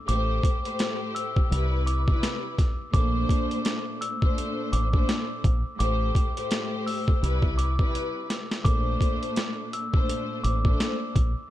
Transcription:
0.06 0.39 A1 loud
0.06 0.59 A2 loud
0.06 0.60 A3 medium
0.06 0.60 G4 medium
0.06 0.60 C5 loud
0.06 1.11 D6 loud
0.06 closed hi-hat medium
0.43 kick medium
0.43 closed hi-hat medium
0.64 1.50 A2 medium
0.64 1.51 A3 medium
0.64 1.51 G4 medium
0.64 1.52 C5 loud
0.64 closed hi-hat medium
0.79 snare loud
0.79 closed hi-hat medium
1.15 1.47 E6 medium
1.15 closed hi-hat medium
1.36 kick loud
1.49 2.12 C2 loud
1.49 2.02 C3 medium
1.49 2.02 G3 medium
1.49 2.03 E4 medium
1.49 2.03 B4 loud
1.49 closed hi-hat medium
1.87 2.06 D6 medium
1.87 closed hi-hat medium
2.07 2.54 C3 medium
2.07 2.55 G3 medium
2.07 2.55 E4 medium
2.07 2.56 B4 loud
2.07 kick medium
2.23 snare loud
2.23 closed hi-hat medium
2.59 kick loud
2.59 snare soft
2.59 closed hi-hat medium
2.92 3.24 A#1 loud
2.92 4.09 A#2 loud
2.92 4.10 A3 loud
2.92 4.10 D4 medium
2.92 4.11 C5 loud
2.92 3.97 D6 loud
2.92 kick loud
2.92 closed hi-hat medium
3.29 kick medium
3.29 closed hi-hat medium
3.51 closed hi-hat medium
3.65 snare loud
3.65 closed hi-hat medium
4.01 4.33 E6 medium
4.01 closed hi-hat medium
4.20 4.86 A#2 loud
4.20 4.86 A3 medium
4.20 4.87 D4 medium
4.20 4.87 C5 loud
4.20 kick loud
4.38 closed hi-hat medium
4.73 5.03 A1 medium
4.73 4.92 D6 medium
4.73 closed hi-hat medium
4.92 5.39 A#2 medium
4.92 5.40 A3 medium
4.92 5.40 D4 medium
4.92 5.41 C5 loud
4.92 kick medium
5.09 snare loud
5.09 closed hi-hat medium
5.44 5.62 A#1 medium
5.44 kick loud
5.44 closed hi-hat medium
5.78 6.10 A1 loud
5.78 6.30 A2 loud
5.78 6.31 A3 medium
5.78 6.31 G4 medium
5.78 6.32 C5 loud
5.78 6.82 D6 loud
5.78 closed hi-hat medium
6.15 kick medium
6.15 closed hi-hat medium
6.35 7.22 A2 medium
6.35 7.22 A3 medium
6.35 7.23 G4 medium
6.35 7.23 C5 loud
6.35 closed hi-hat medium
6.51 snare loud
6.51 closed hi-hat medium
6.87 7.19 E6 medium
6.87 open hi-hat medium
7.08 kick loud
7.20 7.83 C2 loud
7.20 7.73 C3 medium
7.20 7.74 G3 medium
7.20 7.74 E4 medium
7.20 7.75 B4 loud
7.20 closed hi-hat loud
7.42 kick medium
7.58 7.77 D6 medium
7.58 closed hi-hat medium
7.79 8.26 C3 medium
7.79 8.26 G3 medium
7.79 8.27 E4 medium
7.79 8.27 B4 loud
7.79 kick medium
7.95 closed hi-hat medium
8.30 snare medium
8.30 closed hi-hat medium
8.52 snare medium
8.63 8.96 A#1 loud
8.63 9.81 A#2 loud
8.63 9.81 A3 loud
8.63 9.82 D4 medium
8.63 9.82 C5 loud
8.63 9.68 D6 loud
8.63 kick loud
8.63 closed hi-hat medium
9.01 kick medium
9.01 closed hi-hat medium
9.23 closed hi-hat medium
9.36 snare loud
9.36 closed hi-hat medium
9.73 10.05 E6 medium
9.73 closed hi-hat medium
9.91 10.57 A#2 loud
9.91 10.58 A3 medium
9.91 10.58 D4 medium
9.91 10.59 C5 loud
9.91 kick loud
10.09 closed hi-hat loud
10.44 10.74 A1 medium
10.44 10.63 D6 medium
10.44 closed hi-hat medium
10.63 11.10 A#2 medium
10.63 11.11 A3 medium
10.63 11.11 D4 medium
10.63 11.12 C5 loud
10.63 kick medium
10.80 snare loud
10.80 closed hi-hat medium
11.16 11.34 A#1 medium
11.16 kick loud
11.16 closed hi-hat medium

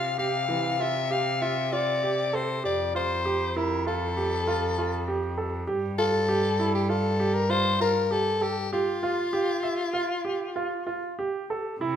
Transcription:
0.00 2.66 C3 medium
0.00 0.11 F4 medium
0.00 0.15 F5 loud
0.18 0.42 G4 medium
0.18 0.82 F5 medium
0.49 0.73 E3 medium
0.80 1.04 F4 medium
0.80 1.13 E5 medium
1.11 1.34 G4 medium
1.11 1.43 F5 medium
1.42 1.65 F4 medium
1.42 1.74 E5 medium
1.72 1.96 F4 medium
1.72 2.36 D5 medium
2.03 2.27 G4 medium
2.33 2.57 A4 medium
2.33 2.65 C5 medium
2.64 5.69 F2 medium
2.64 2.88 G4 medium
2.64 2.93 D5 medium
2.95 3.18 F4 medium
2.95 3.58 C5 medium
3.25 3.49 G4 medium
3.56 3.80 E4 medium
3.56 3.86 A#4 medium
3.86 4.10 F4 medium
3.86 5.34 A4 medium
4.17 4.40 G4 medium
4.47 4.70 F4 medium
4.78 5.01 F4 medium
5.08 5.31 G4 medium
5.38 5.61 A4 medium
5.67 8.68 G2 medium
5.67 5.91 G4 medium
5.98 6.22 F4 medium
5.98 6.71 A4 medium
6.29 6.52 G4 medium
6.60 6.83 E4 medium
6.75 6.92 G4 medium
6.89 7.13 F4 medium
6.89 7.36 A4 medium
7.20 7.43 G4 medium
7.35 7.51 A#4 medium
7.50 7.73 F4 medium
7.50 7.80 C5 loud
7.80 8.04 F4 medium
7.80 8.14 A#4 medium
8.11 8.35 G4 medium
8.11 8.44 A4 loud
8.41 8.73 G4 medium
8.41 8.65 A4 medium
8.73 11.15 F4 medium
8.73 8.96 G4 medium
9.03 9.26 F4 medium
9.33 9.57 G4 medium
9.63 9.87 E5 medium
9.93 10.18 F4 medium
10.25 10.49 G4 medium
10.56 10.80 F4 medium
10.87 11.11 F4 medium
11.19 11.43 G4 medium
11.50 11.74 A4 medium
11.80 11.96 C3 medium
11.80 11.96 E4 medium

